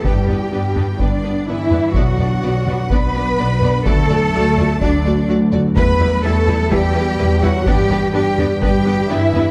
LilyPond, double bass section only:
\new Staff \with { instrumentName = "Double bass section" } { \clef bass \time 4/4 \key g \major \tempo 4 = 126 g,4 g,4 g,4 g,4 | b,,4 b,,4 b,,4 b,,4 | d,4 d,4 d,4 d,4 | e,4 e,4 e,4 e,4 |
g,4 g,4 g,4 g,4 | }